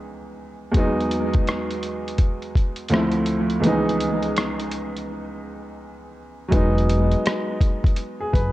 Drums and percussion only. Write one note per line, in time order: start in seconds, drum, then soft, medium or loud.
0.75 kick medium
0.75 closed hi-hat medium
1.01 closed hi-hat soft
1.11 closed hi-hat medium
1.34 kick medium
1.34 closed hi-hat soft
1.47 cross-stick loud
1.47 closed hi-hat medium
1.71 closed hi-hat soft
1.83 closed hi-hat medium
2.08 closed hi-hat soft
2.18 kick medium
2.18 closed hi-hat medium
2.42 closed hi-hat soft
2.55 kick medium
2.55 closed hi-hat medium
2.76 closed hi-hat soft
2.88 closed hi-hat medium
2.94 cross-stick loud
3.11 closed hi-hat soft
3.26 closed hi-hat medium
3.50 closed hi-hat soft
3.63 closed hi-hat medium
3.89 closed hi-hat soft
4.00 closed hi-hat medium
4.23 closed hi-hat soft
4.36 cross-stick loud
4.36 closed hi-hat medium
4.59 closed hi-hat soft
4.71 closed hi-hat medium
4.97 closed hi-hat soft
6.52 kick loud
6.52 closed hi-hat medium
6.78 closed hi-hat soft
6.89 closed hi-hat medium
7.12 closed hi-hat soft
7.26 cross-stick loud
7.26 closed hi-hat medium
7.61 kick medium
7.61 closed hi-hat medium
7.84 kick medium
7.84 closed hi-hat soft
7.96 closed hi-hat medium
8.34 kick medium
8.34 closed hi-hat medium